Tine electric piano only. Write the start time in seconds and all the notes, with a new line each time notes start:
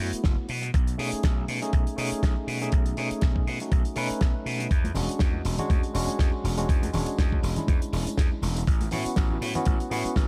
Already playing: A3 B3 E4 F#4
0.98 A3 C#4 D#4 G#4
1.62 A3 C#4 D#4 G#4
1.97 A3 C#4 D#4 G#4
2.61 A3 C#4 D#4 G#4
2.97 A3 C#4 D#4 G#4
3.61 A3 C#4 D#4 F#4
3.96 A3 C#4 D#4 B4
4.95 G#3 C#4 D4 F#4
5.59 G#3 C#4 D4 F#4
5.94 G#3 C#4 D4 F#4
6.58 G#3 C#4 D4 F#4
6.92 G#3 C#4 D4 F#4
7.56 G#3 C#4 D4 E4
8.91 B3 C#4 E4 F#4
9.55 B3 C#4 E4 F#4
9.90 B3 C#4 E4 F#4